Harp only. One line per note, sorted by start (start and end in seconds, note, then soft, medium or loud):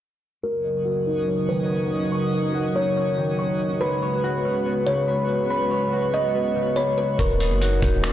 0.43 1.69 C#6 loud
0.64 2.33 D#5 medium
0.85 2.54 F#4 medium
1.07 2.75 D#4 medium
1.28 2.96 C#4 medium
1.49 3.16 D#3 medium
1.70 2.11 C#6 medium
2.12 3.38 C#6 loud
2.33 4.12 D#5 medium
2.54 4.23 F#4 medium
2.75 5.46 D#4 medium
2.97 4.44 C#4 medium
3.17 3.86 D#3 medium
3.38 4.65 C#6 medium
3.81 5.08 B5 loud
4.02 5.71 C#5 medium
4.24 5.92 F#4 medium
4.45 6.13 C#4 medium
4.65 6.34 B3 medium
4.87 6.54 C#3 medium
5.08 5.50 B5 loud
5.50 6.76 B5 loud
5.71 7.62 C#5 medium
5.93 7.61 F#4 medium
6.13 8.03 C#4 medium
6.35 8.13 B3 medium
6.56 7.24 C#3 medium
6.77 8.12 B5 loud
7.19 8.13 C#6 loud
7.40 8.13 D#5 medium
7.61 8.13 F#4 medium
7.83 8.13 D#4 medium
8.04 8.13 C#4 medium